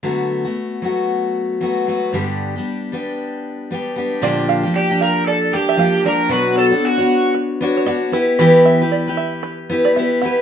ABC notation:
X:1
M:4/4
L:1/16
Q:"Swing 16ths" 1/4=115
K:D
V:1 name="Five-string banjo"
z16 | z16 | d2 =f2 d2 f z d z2 e f z d z | z2 c z4 z B z2 c d z B z |
B2 e2 d2 e z B z2 d e z f z |]
V:2 name="Electric slide guitar"
z16 | z16 | z4 G2 _B2 A2 G4 B2 | B2 A2 F4 z8 |
z16 |]
V:3 name="Steel-string acoustic guitar"
[D,F,A,B,F]3 [A,B,F]3 [F,A,B,F]6 [F,A,B,F]2 [F,A,B,F]2 | [G,,D,G,B,DG]3 [G,B,DG]3 [G,B,DG]6 [G,B,DG]2 [G,B,DG]2 | [_B,,D,=F,_B,DG]3 [F,B,DG]2 [F,B,DG]4- [F,B,DG] [F,B,DG]2 [F,B,DG]2 [F,B,DG]2 | [B,,F,B,DFc]3 [B,DFc]2 [B,DFc]4- [B,DFc] [B,DFc]2 [B,DFc]2 [B,EGB]2 |
[E,B,EGB]3 [EGB]2 [EGB]4- [EGB] [B,EGB]2 [B,EGB]2 [B,EGB]2 |]